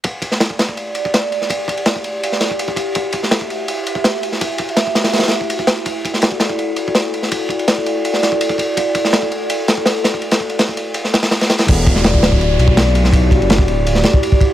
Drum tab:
CC |--------------------------------|--------------------------------|--------------------------------|--------------------------------|
RD |x---x---x---x---x---x---x---x---|x---x-x-x---x---x---x---x---x---|x---x---x---x---x---x---x---x---|x---x-x-x---x-x-xxxxx---x---x-x-|
SD |------o-o---o-----------o-----o-|--------o---------o-o-----------|------o-o---------------o-----o-|--------o---o-o-ooooo-------o---|
BD |o---o-----o---o-------o---------|o---o-----o-----------o---o-o---|o---o-----o-----------o---------|o---o-----o-----------o---o-----|

CC |--------------------------------|--------------------------------|--------------------------------|--------------------------------|
RD |x---x---x---x---x---x---x---x---|x---x-x-x---x---x---x---x---x---|x---x---x---x---x---x---x---x---|x-x---x-x---x---x---x-x-x-x-x-x-|
SD |------o-o---o-----------o-----o-|--------o---------o-o-----------|------o-o-----------o---o---o---|--o-----o---------o-o-o-o-o-o-o-|
BD |o---o-----o---o-------o---------|o---o-----o-----------o---o-o---|o---o-----o-----------o-------o-|----o-----o---------------------|

CC |x-------------------------------|--------------------------------|
RD |x---x---x---x---x---x---x---x---|x---x-x-x---x---x---x---x---x---|
SD |------o-o---o-----------o-----o-|--------o---------o-o-----------|
BD |o---o-----o---o-------o---------|o---o-----o-----------o---o-o---|